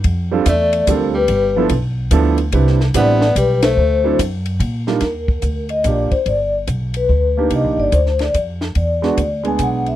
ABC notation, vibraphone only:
X:1
M:3/4
L:1/8
Q:"Swing" 1/4=145
K:G
V:1 name="Vibraphone"
z2 d2 _B =B- | B2 z4 | z2 d2 B c- | c2 z4 |
[K:Cm] B3 e d c | d z2 =B3 | e d c d z2 | d3 ^g ^f =e |]